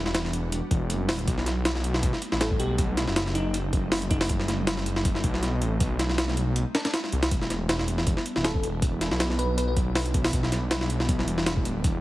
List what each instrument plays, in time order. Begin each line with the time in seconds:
Already playing: detuned saw bass E1, ambient pad G3 B3 D4 F#4
0.06 snare
0.15 snare, closed hi-hat
0.25 snare
0.33 closed hi-hat
0.52 closed hi-hat
0.71 detuned saw bass E1, kick, closed hi-hat
0.90 detuned saw bass F#1, closed hi-hat
1.09 detuned saw bass D1, snare, open hi-hat
1.19 closed hi-hat
1.27 detuned saw bass B1, ambient pad A3 C4 D#4, kick, closed hi-hat
1.38 snare
1.46 snare, closed hi-hat
1.65 snare, closed hi-hat
1.75 snare
1.84 closed hi-hat
1.94 snare
2.03 kick, closed hi-hat
2.13 snare
2.22 closed hi-hat
2.32 detuned saw bass A1, snare
2.41 fm electric piano A4, snare, closed hi-hat
2.51 kick
2.59 detuned saw bass B1, fm electric piano G4, closed hi-hat
2.78 kick, closed hi-hat
2.97 snare, closed hi-hat
3.07 detuned saw bass F#1, snare
3.16 snare, closed hi-hat
3.26 snare
3.35 fm electric piano D#4, closed hi-hat
3.54 closed hi-hat
3.73 kick, closed hi-hat
3.92 snare, open hi-hat
4.02 closed hi-hat
4.10 fm electric piano D#4, kick, closed hi-hat
4.21 fm electric piano D#4, snare, open hi-hat
4.29 kick, closed hi-hat
4.40 snare
4.48 snare, closed hi-hat
4.67 snare, closed hi-hat
4.77 snare
4.86 closed hi-hat
4.96 snare
5.05 kick, closed hi-hat
5.15 snare
5.24 detuned saw bass B1, kick, closed hi-hat
5.34 snare
5.43 snare, closed hi-hat
5.62 detuned saw bass A1, closed hi-hat
5.80 detuned saw bass B1, kick, closed hi-hat
5.99 snare, closed hi-hat
6.09 snare
6.18 snare, closed hi-hat
6.28 snare
6.37 closed hi-hat
6.56 closed hi-hat
6.75 snare, closed hi-hat
6.85 snare, closed hi-hat
6.94 snare, closed hi-hat
7.04 snare
7.12 detuned saw bass C2, closed hi-hat
7.23 snare, closed hi-hat
7.31 detuned saw bass E1, ambient pad G3 B3 D4 E4, kick, closed hi-hat
7.42 snare
7.50 snare, closed hi-hat
7.69 snare, closed hi-hat
7.79 snare
7.88 closed hi-hat
7.98 snare
8.07 kick, closed hi-hat
8.17 snare
8.26 closed hi-hat
8.36 detuned saw bass D1, snare
8.44 fm electric piano A4, snare, closed hi-hat
8.55 kick
8.63 detuned saw bass E1, closed hi-hat
8.82 kick, closed hi-hat
9.01 snare, closed hi-hat
9.11 detuned saw bass B1, snare
9.20 snare, closed hi-hat
9.30 snare
9.39 fm electric piano B4, closed hi-hat
9.58 fm electric piano B4, closed hi-hat
9.68 fm electric piano B4
9.77 kick, closed hi-hat
9.95 snare, open hi-hat
10.06 closed hi-hat
10.14 kick, closed hi-hat
10.24 snare, open hi-hat
10.33 kick, closed hi-hat
10.43 snare
10.52 snare, closed hi-hat
10.71 snare, closed hi-hat
10.81 snare
10.90 closed hi-hat
11.00 snare
11.09 kick, closed hi-hat
11.19 snare
11.27 detuned saw bass E1, closed hi-hat
11.38 snare
11.46 snare, closed hi-hat
11.57 kick
11.65 detuned saw bass D1, closed hi-hat
11.84 detuned saw bass E1, kick, closed hi-hat